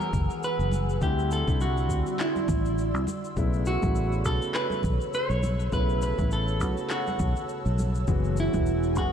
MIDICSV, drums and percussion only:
0, 0, Header, 1, 2, 480
1, 0, Start_track
1, 0, Key_signature, 2, "minor"
1, 0, Tempo, 588235
1, 830, Time_signature, 4, 2, 24, 8
1, 7445, End_track
2, 0, Start_track
2, 0, Title_t, "Drums"
2, 1, Note_on_c, 9, 63, 59
2, 7, Note_on_c, 9, 82, 22
2, 82, Note_off_c, 9, 63, 0
2, 89, Note_off_c, 9, 82, 0
2, 108, Note_on_c, 9, 36, 109
2, 111, Note_on_c, 9, 64, 83
2, 111, Note_on_c, 9, 82, 73
2, 189, Note_off_c, 9, 36, 0
2, 192, Note_off_c, 9, 82, 0
2, 193, Note_off_c, 9, 64, 0
2, 247, Note_on_c, 9, 82, 32
2, 329, Note_off_c, 9, 82, 0
2, 353, Note_on_c, 9, 82, 47
2, 434, Note_off_c, 9, 82, 0
2, 489, Note_on_c, 9, 82, 20
2, 571, Note_off_c, 9, 82, 0
2, 583, Note_on_c, 9, 63, 83
2, 594, Note_on_c, 9, 82, 74
2, 664, Note_off_c, 9, 63, 0
2, 675, Note_off_c, 9, 82, 0
2, 730, Note_on_c, 9, 82, 32
2, 811, Note_off_c, 9, 82, 0
2, 829, Note_on_c, 9, 36, 109
2, 830, Note_on_c, 9, 82, 43
2, 910, Note_off_c, 9, 36, 0
2, 911, Note_off_c, 9, 82, 0
2, 970, Note_on_c, 9, 82, 21
2, 1051, Note_off_c, 9, 82, 0
2, 1071, Note_on_c, 9, 82, 75
2, 1152, Note_off_c, 9, 82, 0
2, 1203, Note_on_c, 9, 63, 80
2, 1205, Note_on_c, 9, 36, 97
2, 1209, Note_on_c, 9, 82, 33
2, 1284, Note_off_c, 9, 63, 0
2, 1287, Note_off_c, 9, 36, 0
2, 1291, Note_off_c, 9, 82, 0
2, 1310, Note_on_c, 9, 82, 43
2, 1392, Note_off_c, 9, 82, 0
2, 1447, Note_on_c, 9, 82, 22
2, 1529, Note_off_c, 9, 82, 0
2, 1548, Note_on_c, 9, 36, 62
2, 1551, Note_on_c, 9, 82, 71
2, 1630, Note_off_c, 9, 36, 0
2, 1633, Note_off_c, 9, 82, 0
2, 1684, Note_on_c, 9, 82, 33
2, 1766, Note_off_c, 9, 82, 0
2, 1791, Note_on_c, 9, 39, 77
2, 1792, Note_on_c, 9, 82, 42
2, 1873, Note_off_c, 9, 39, 0
2, 1873, Note_off_c, 9, 82, 0
2, 1925, Note_on_c, 9, 63, 59
2, 1928, Note_on_c, 9, 82, 22
2, 2007, Note_off_c, 9, 63, 0
2, 2010, Note_off_c, 9, 82, 0
2, 2024, Note_on_c, 9, 64, 79
2, 2028, Note_on_c, 9, 36, 103
2, 2031, Note_on_c, 9, 82, 71
2, 2105, Note_off_c, 9, 64, 0
2, 2109, Note_off_c, 9, 36, 0
2, 2112, Note_off_c, 9, 82, 0
2, 2167, Note_on_c, 9, 82, 34
2, 2248, Note_off_c, 9, 82, 0
2, 2270, Note_on_c, 9, 82, 49
2, 2352, Note_off_c, 9, 82, 0
2, 2409, Note_on_c, 9, 82, 19
2, 2491, Note_off_c, 9, 82, 0
2, 2505, Note_on_c, 9, 63, 89
2, 2512, Note_on_c, 9, 82, 74
2, 2586, Note_off_c, 9, 63, 0
2, 2593, Note_off_c, 9, 82, 0
2, 2647, Note_on_c, 9, 82, 33
2, 2729, Note_off_c, 9, 82, 0
2, 2748, Note_on_c, 9, 36, 103
2, 2748, Note_on_c, 9, 82, 43
2, 2830, Note_off_c, 9, 36, 0
2, 2830, Note_off_c, 9, 82, 0
2, 2884, Note_on_c, 9, 82, 21
2, 2965, Note_off_c, 9, 82, 0
2, 2985, Note_on_c, 9, 82, 72
2, 3067, Note_off_c, 9, 82, 0
2, 3120, Note_on_c, 9, 63, 94
2, 3123, Note_on_c, 9, 82, 33
2, 3125, Note_on_c, 9, 36, 102
2, 3202, Note_off_c, 9, 63, 0
2, 3204, Note_off_c, 9, 82, 0
2, 3207, Note_off_c, 9, 36, 0
2, 3227, Note_on_c, 9, 82, 40
2, 3309, Note_off_c, 9, 82, 0
2, 3365, Note_on_c, 9, 82, 22
2, 3446, Note_off_c, 9, 82, 0
2, 3467, Note_on_c, 9, 82, 64
2, 3468, Note_on_c, 9, 36, 62
2, 3549, Note_off_c, 9, 82, 0
2, 3550, Note_off_c, 9, 36, 0
2, 3606, Note_on_c, 9, 82, 30
2, 3688, Note_off_c, 9, 82, 0
2, 3709, Note_on_c, 9, 39, 72
2, 3709, Note_on_c, 9, 82, 41
2, 3790, Note_off_c, 9, 39, 0
2, 3791, Note_off_c, 9, 82, 0
2, 3837, Note_on_c, 9, 63, 60
2, 3848, Note_on_c, 9, 82, 21
2, 3918, Note_off_c, 9, 63, 0
2, 3929, Note_off_c, 9, 82, 0
2, 3942, Note_on_c, 9, 64, 85
2, 3949, Note_on_c, 9, 36, 101
2, 3953, Note_on_c, 9, 82, 73
2, 4023, Note_off_c, 9, 64, 0
2, 4031, Note_off_c, 9, 36, 0
2, 4034, Note_off_c, 9, 82, 0
2, 4088, Note_on_c, 9, 82, 32
2, 4170, Note_off_c, 9, 82, 0
2, 4190, Note_on_c, 9, 82, 44
2, 4272, Note_off_c, 9, 82, 0
2, 4326, Note_on_c, 9, 82, 20
2, 4408, Note_off_c, 9, 82, 0
2, 4432, Note_on_c, 9, 82, 70
2, 4434, Note_on_c, 9, 63, 95
2, 4513, Note_off_c, 9, 82, 0
2, 4516, Note_off_c, 9, 63, 0
2, 4568, Note_on_c, 9, 82, 30
2, 4650, Note_off_c, 9, 82, 0
2, 4671, Note_on_c, 9, 36, 103
2, 4671, Note_on_c, 9, 82, 42
2, 4752, Note_off_c, 9, 82, 0
2, 4753, Note_off_c, 9, 36, 0
2, 4809, Note_on_c, 9, 82, 20
2, 4890, Note_off_c, 9, 82, 0
2, 4911, Note_on_c, 9, 82, 71
2, 4992, Note_off_c, 9, 82, 0
2, 5048, Note_on_c, 9, 36, 91
2, 5048, Note_on_c, 9, 82, 29
2, 5049, Note_on_c, 9, 63, 79
2, 5129, Note_off_c, 9, 36, 0
2, 5129, Note_off_c, 9, 82, 0
2, 5130, Note_off_c, 9, 63, 0
2, 5150, Note_on_c, 9, 82, 42
2, 5231, Note_off_c, 9, 82, 0
2, 5287, Note_on_c, 9, 82, 20
2, 5369, Note_off_c, 9, 82, 0
2, 5390, Note_on_c, 9, 82, 64
2, 5392, Note_on_c, 9, 36, 55
2, 5471, Note_off_c, 9, 82, 0
2, 5474, Note_off_c, 9, 36, 0
2, 5527, Note_on_c, 9, 82, 29
2, 5608, Note_off_c, 9, 82, 0
2, 5629, Note_on_c, 9, 39, 67
2, 5630, Note_on_c, 9, 82, 41
2, 5711, Note_off_c, 9, 39, 0
2, 5711, Note_off_c, 9, 82, 0
2, 5769, Note_on_c, 9, 82, 20
2, 5775, Note_on_c, 9, 63, 57
2, 5851, Note_off_c, 9, 82, 0
2, 5856, Note_off_c, 9, 63, 0
2, 5869, Note_on_c, 9, 64, 80
2, 5871, Note_on_c, 9, 82, 71
2, 5873, Note_on_c, 9, 36, 99
2, 5951, Note_off_c, 9, 64, 0
2, 5953, Note_off_c, 9, 82, 0
2, 5954, Note_off_c, 9, 36, 0
2, 6008, Note_on_c, 9, 82, 31
2, 6090, Note_off_c, 9, 82, 0
2, 6112, Note_on_c, 9, 82, 43
2, 6194, Note_off_c, 9, 82, 0
2, 6248, Note_on_c, 9, 82, 20
2, 6330, Note_off_c, 9, 82, 0
2, 6352, Note_on_c, 9, 82, 70
2, 6356, Note_on_c, 9, 63, 88
2, 6434, Note_off_c, 9, 82, 0
2, 6437, Note_off_c, 9, 63, 0
2, 6487, Note_on_c, 9, 82, 30
2, 6569, Note_off_c, 9, 82, 0
2, 6588, Note_on_c, 9, 82, 39
2, 6592, Note_on_c, 9, 36, 107
2, 6669, Note_off_c, 9, 82, 0
2, 6674, Note_off_c, 9, 36, 0
2, 6727, Note_on_c, 9, 82, 20
2, 6808, Note_off_c, 9, 82, 0
2, 6829, Note_on_c, 9, 82, 67
2, 6911, Note_off_c, 9, 82, 0
2, 6965, Note_on_c, 9, 82, 31
2, 6967, Note_on_c, 9, 63, 78
2, 6969, Note_on_c, 9, 36, 90
2, 7046, Note_off_c, 9, 82, 0
2, 7049, Note_off_c, 9, 63, 0
2, 7051, Note_off_c, 9, 36, 0
2, 7068, Note_on_c, 9, 82, 38
2, 7149, Note_off_c, 9, 82, 0
2, 7207, Note_on_c, 9, 82, 20
2, 7289, Note_off_c, 9, 82, 0
2, 7308, Note_on_c, 9, 82, 63
2, 7313, Note_on_c, 9, 36, 60
2, 7390, Note_off_c, 9, 82, 0
2, 7395, Note_off_c, 9, 36, 0
2, 7445, End_track
0, 0, End_of_file